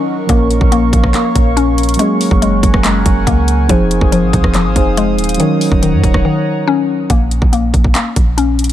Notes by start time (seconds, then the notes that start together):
Already playing: D#3 F#3 C#4 D#4 A#4 C#5 D#5 F#5 C#6
0.26 A#1 F3 A#3 C#4 C#5 F5, kick, closed hi-hat
0.31 A#4 C#5
0.51 closed hi-hat
0.61 A#1, kick
0.72 A#3, closed hi-hat
0.93 A#1, kick, closed hi-hat
1.04 kick, cross-stick
1.14 A#3, clap, closed hi-hat
1.35 A#1, kick, closed hi-hat
1.57 C#4, closed hi-hat
1.78 closed hi-hat
1.83 closed hi-hat
1.89 closed hi-hat
1.94 F#3 A#3, closed hi-hat
1.99 G#3 C#4 G#4 A#4 C#5 F#5 G#5, closed hi-hat
2.21 open hi-hat
2.31 F#1, kick
2.42 G#3, closed hi-hat
2.63 F#1, kick, closed hi-hat
2.74 kick, cross-stick
2.84 G#3, clap, closed hi-hat
3.06 F#1, kick, closed hi-hat
3.27 C#2 A#3, kick, closed hi-hat
3.48 closed hi-hat
3.67 F1 F3 C4 D#4 C5 F5 D#6, kick, closed hi-hat
3.71 G#4 C5
3.91 closed hi-hat
4.01 F1, kick
4.12 F3, closed hi-hat
4.23 G#1
4.33 C2, kick, closed hi-hat
4.44 F1, kick, cross-stick
4.54 F3, clap, closed hi-hat
4.65 G#1
4.75 F1 F3 C4 D#4 G#4 C5, kick, closed hi-hat
4.97 G#3, closed hi-hat
5.18 D#1, closed hi-hat
5.24 closed hi-hat
5.29 closed hi-hat
5.34 F#3, closed hi-hat
5.39 D#3 C#4 D#4 A#4 C#5 F#5 A#5, closed hi-hat
5.43 C#5
5.61 open hi-hat
5.72 D#1, kick
5.82 D#3, closed hi-hat
5.93 F#2
6.04 D#1, kick, closed hi-hat
6.14 D#1, kick, cross-stick
6.25 D#3
6.67 C#4
7.10 A#1 A#3, kick, closed hi-hat
7.31 closed hi-hat
7.42 A#1, kick
7.53 A#3, closed hi-hat
7.74 A#1, kick, closed hi-hat
7.84 kick
7.95 A#3, clap, closed hi-hat
8.16 A#1, kick, closed hi-hat
8.37 C#4, closed hi-hat
8.59 closed hi-hat
8.64 closed hi-hat
8.70 closed hi-hat